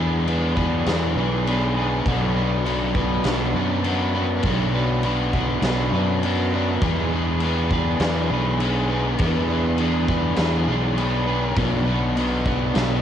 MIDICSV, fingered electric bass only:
0, 0, Header, 1, 2, 480
1, 0, Start_track
1, 0, Tempo, 595238
1, 1657, Time_signature, 4, 2, 24, 8
1, 10497, End_track
2, 0, Start_track
2, 0, Title_t, "Fingered electric bass"
2, 0, Program_c, 0, 33
2, 0, Note_on_c, 0, 40, 93
2, 665, Note_off_c, 0, 40, 0
2, 696, Note_on_c, 0, 40, 86
2, 923, Note_off_c, 0, 40, 0
2, 930, Note_on_c, 0, 35, 80
2, 1621, Note_off_c, 0, 35, 0
2, 1655, Note_on_c, 0, 35, 92
2, 2583, Note_off_c, 0, 35, 0
2, 2617, Note_on_c, 0, 35, 91
2, 2843, Note_off_c, 0, 35, 0
2, 2853, Note_on_c, 0, 42, 76
2, 3542, Note_off_c, 0, 42, 0
2, 3578, Note_on_c, 0, 35, 85
2, 4504, Note_off_c, 0, 35, 0
2, 4530, Note_on_c, 0, 35, 87
2, 4758, Note_off_c, 0, 35, 0
2, 4772, Note_on_c, 0, 42, 75
2, 5461, Note_off_c, 0, 42, 0
2, 5497, Note_on_c, 0, 40, 88
2, 6423, Note_off_c, 0, 40, 0
2, 6450, Note_on_c, 0, 40, 88
2, 6678, Note_off_c, 0, 40, 0
2, 6689, Note_on_c, 0, 35, 81
2, 7379, Note_off_c, 0, 35, 0
2, 7415, Note_on_c, 0, 40, 88
2, 8342, Note_off_c, 0, 40, 0
2, 8368, Note_on_c, 0, 40, 83
2, 8597, Note_off_c, 0, 40, 0
2, 8606, Note_on_c, 0, 35, 77
2, 9298, Note_off_c, 0, 35, 0
2, 9328, Note_on_c, 0, 35, 98
2, 10259, Note_off_c, 0, 35, 0
2, 10286, Note_on_c, 0, 35, 91
2, 10497, Note_off_c, 0, 35, 0
2, 10497, End_track
0, 0, End_of_file